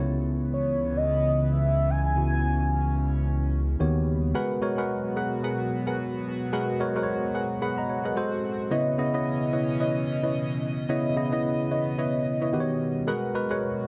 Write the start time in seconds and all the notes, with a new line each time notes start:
Already playing: C#3
0.00 C#2 C#3 E3 B3 E4 C#5
0.53 C#5
0.97 D#5
1.51 E5
1.90 G#5
2.06 G#5
2.15 C#3 B3 C#4 E4 F#4
3.80 D#2 D#3 G3 B3 F#4 G4 C#5
4.34 B2 F#3 G#3 B3 F#4 G#4 A#4 B4 F#5
4.61 G#3 F#4 A#4 C#5
4.77 G#3 F#4 G#4 A#4 B4 F#5
5.16 G#4 A#4 B4 F#5
5.43 G#4 A#4 B4 F#5
5.87 G#4 A#4 B4 F#5
6.52 G#3 F#4 G#4 A#4 B4 F#5
6.80 G#3 F#4 A#4 C#5
6.95 G#3 F#4 G#4 A#4 B4 C5 F#5
7.03 C#5
7.34 G#4 A#4 B4 F#5
7.62 G#4 A#4 B4 F#5 B5
7.78 D#5 A#5
7.89 C#5 F#5
8.05 G#4 A#4 B4 D#5 F#5
8.16 A2 G#3 C4 F#4 A4 C5
8.71 B2 C#3 E3 B3 C#4 E4 B4 C#5 D#5
8.98 C#3 B3 E4 D#5
9.14 C#3 B3 E4 B4 C#5 D#5
9.53 E4 B4 C#5 D#5
9.80 E4 B4 C#5 D#5
10.23 E4 B4 C#5 D#5
10.89 C#3 B3 E4 B4 C#5 D#5
11.16 C#3 B3 E4 D#5
11.32 C#3 B3 E4 B4 C#5 D#5
11.71 E4 B4 C#5 D#5
11.98 E4 B4 C#5 D#5
12.41 E4 B4 C#5 D#5
12.53 B2 D#3 G3 B3 C#4 F#4 G4 B4
12.60 C#5
13.07 B2 F#3 G#3 B3 F#4 G#4 A#4 B4 F#5
13.34 G#3 F#4 A#4 B4
13.50 G#3 F#4 G#4 A#4 B4 C#5 F#5